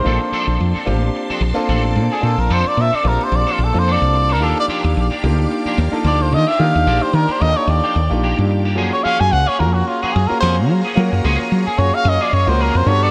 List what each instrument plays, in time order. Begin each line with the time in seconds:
Already playing: muted trumpet C5
0.04 fretless electric bass A#1, clean electric guitar F3 C4 D4 A4, grand piano A#3 C4 D4 F4 A4, string machine D5
0.08 string machine A5 C6
0.21 muted clean electric guitar stroke
0.32 clean electric guitar F3 C4 D4 A4, muted fretless electric bass stroke
0.47 fretless electric bass A#1, muted clean electric guitar stroke
0.60 fretless electric bass F2
0.75 clean electric guitar C4 D4 A4, muted fretless electric bass stroke
0.86 fretless electric bass A1, grand piano A#3 C4 D4 F4 G4, muted clean electric guitar stroke
1.02 muted clean electric guitar stroke
1.15 muted clean electric guitar stroke
1.30 clean electric guitar F3 C4 D4 A4, muted fretless electric bass stroke
1.41 fretless electric bass A#1, muted clean electric guitar stroke
1.54 grand piano A#3 C4 D4 F4 A4
1.69 fretless electric bass A1, clean electric guitar F3 C4 D4 A4
1.85 muted clean electric guitar stroke
1.96 fretless electric bass A#2, muted clean electric guitar stroke
2.12 clean electric guitar C4 D4 A4, muted trumpet G#4
2.21 fretless electric bass A#2, grand piano A#3 C4 D4 F4 C5, muted trumpet A4, string machine D6
2.38 fretless electric bass A#1, muted trumpet A#4, muted clean electric guitar stroke
2.50 fretless electric bass F2, clean electric guitar F3 C4 D4 A4, muted trumpet C5
2.65 muted trumpet D5, muted fretless electric bass stroke, muted clean electric guitar stroke
2.77 fretless electric bass A#2, muted trumpet E5
2.93 clean electric guitar C4 D4 A4, muted trumpet D5, muted fretless electric bass stroke
3.04 fretless electric bass A#1, grand piano A#3 C4 D4 F4 G4, muted clean electric guitar stroke
3.08 muted trumpet A#4
3.20 muted trumpet C5, muted clean electric guitar stroke
3.32 fretless electric bass A#1, muted trumpet D5, muted clean electric guitar stroke
3.47 clean electric guitar F3 C4 D4 A4
3.52 muted trumpet F4
3.59 fretless electric bass A#1, muted clean electric guitar stroke
3.64 muted trumpet A4
3.74 fretless electric bass F2, grand piano A#3 C4 D4 F4 A4
3.79 muted trumpet C5
3.87 clean electric guitar F3 C4 D4 A4
3.92 muted trumpet D5
4.02 fretless electric bass C2, muted clean electric guitar stroke
4.15 muted clean electric guitar stroke
4.29 clean electric guitar C4 D4 A4, muted trumpet A#4
4.40 fretless electric bass D#2, clean electric guitar F3 A#3 D4 G4, grand piano A#3 D4 D#4 F4 G4, string machine G4 D5 F5, muted trumpet A4
4.57 muted trumpet D5, muted clean electric guitar stroke
4.68 clean electric guitar F3 A#3 D4 G4, muted fretless electric bass stroke
4.84 fretless electric bass D#2, muted clean electric guitar stroke
4.97 fretless electric bass A#1
5.11 clean electric guitar A#3 D4 G4
5.23 fretless electric bass D2, grand piano A#3 D4 D#4 F4 G4, muted clean electric guitar stroke
5.39 muted clean electric guitar stroke
5.51 muted clean electric guitar stroke
5.65 clean electric guitar F3 A#3 D4 G4, muted fretless electric bass stroke
5.78 fretless electric bass D#2, muted clean electric guitar stroke
5.91 grand piano A#3 D4 D#4 F4 A4, muted fretless electric bass stroke
6.04 fretless electric bass D2, clean electric guitar F3 A#3 D4 G4, muted trumpet D5
6.20 muted trumpet C5, muted clean electric guitar stroke
6.32 fretless electric bass D#3, muted trumpet D#5, muted clean electric guitar stroke
6.47 clean electric guitar A#3 D4 G4, muted trumpet E5
6.58 fretless electric bass D#3, grand piano A#3 D4 D#4 F4 G4, muted trumpet F5, string machine G5
6.74 fretless electric bass D#2, muted clean electric guitar stroke
6.87 fretless electric bass A#1, clean electric guitar F3 A#3 D4 G4
7.02 muted trumpet C5, muted clean electric guitar stroke
7.13 fretless electric bass D#3, muted trumpet A#4
7.28 clean electric guitar A#3 D4 G4, muted trumpet C5, muted fretless electric bass stroke
7.40 fretless electric bass D#2, grand piano A#3 D4 D#4 F4 A4, muted trumpet D#5, muted clean electric guitar stroke
7.57 muted trumpet C#5, muted clean electric guitar stroke
7.67 fretless electric bass D#2, muted trumpet D5, muted clean electric guitar stroke
7.84 clean electric guitar F3 A#3 D4 G4
7.96 fretless electric bass D#2, muted clean electric guitar stroke
8.10 fretless electric bass A#1, grand piano A#3 D4 D#4 F4 G4
8.22 clean electric guitar F3 A#3 D4 G4
8.38 fretless electric bass G2, muted clean electric guitar stroke
8.50 muted clean electric guitar stroke
8.65 clean electric guitar A#3 D4 G4
8.75 fretless electric bass F#2, clean electric guitar F3 A#3 C#4 G#4, grand piano A#3 C#4 F4 F#4 G#4, string machine G#4 C#5 F5 A#5
8.93 muted trumpet C#5, muted clean electric guitar stroke
9.04 clean electric guitar F3 A#3 C#4 G#4, muted trumpet F5, muted fretless electric bass stroke
9.20 fretless electric bass F#2, muted trumpet G#5, muted clean electric guitar stroke
9.32 fretless electric bass C#2, muted trumpet F#5
9.46 clean electric guitar A#3 C#4 G#4, muted trumpet C#5
9.59 fretless electric bass F2, grand piano A#3 C#4 F4 F#4 A#4, muted trumpet A#4, muted clean electric guitar stroke
9.73 muted trumpet F#4, muted clean electric guitar stroke
9.87 muted trumpet F4, muted clean electric guitar stroke
10.02 clean electric guitar F3 A#3 C#4 G#4, muted trumpet F#4, muted fretless electric bass stroke
10.13 fretless electric bass F#2, muted trumpet G#4, muted clean electric guitar stroke
10.28 grand piano A#3 C#4 F4 F#4 G#4, muted trumpet A#4, muted fretless electric bass stroke
10.40 fretless electric bass F2, clean electric guitar F3 A#3 C#4 G#4, muted trumpet C5
10.57 muted clean electric guitar stroke
10.69 fretless electric bass F#3, muted clean electric guitar stroke
10.85 clean electric guitar A#3 C#4 G#4
10.95 fretless electric bass F#3, grand piano A#3 C#4 F4 F#4 A#4
11.12 fretless electric bass F#2, muted clean electric guitar stroke
11.24 fretless electric bass C#2, clean electric guitar F3 A#3 C#4 G#4
11.39 muted clean electric guitar stroke
11.52 fretless electric bass F#3
11.66 clean electric guitar A#3 C#4 G#4, muted trumpet G#4, muted fretless electric bass stroke
11.77 fretless electric bass F#2, grand piano A#3 C#4 F4 F#4 G#4, muted trumpet C#5, muted clean electric guitar stroke
11.94 muted trumpet F5, muted clean electric guitar stroke
12.05 fretless electric bass F#2, muted trumpet D#5, muted clean electric guitar stroke
12.21 clean electric guitar F3 A#3 C#4 G#4, muted trumpet D5
12.33 fretless electric bass F#2, muted trumpet C#5, muted clean electric guitar stroke
12.46 fretless electric bass C#2, grand piano A#3 C#4 F4 F#4 A#4, muted trumpet C5
12.59 clean electric guitar F3 A#3 C#4 G#4, muted trumpet A#4
12.75 fretless electric bass F2, muted trumpet C5, muted clean electric guitar stroke
12.86 fretless electric bass G2, grand piano B3 D4 F#4 G4 A4, string machine A4 B5, muted trumpet C#5, muted clean electric guitar stroke
12.90 string machine F#5
13.03 clean electric guitar B3 D4 A4, muted trumpet D5